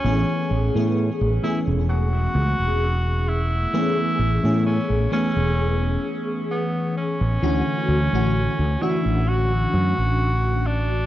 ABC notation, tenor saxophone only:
X:1
M:4/4
L:1/8
Q:"Swing 16ths" 1/4=65
K:A
V:1 name="Tenor saxophone"
C2 z E F3 E- | E2 C C2 z B, C- | C3 E F3 D |]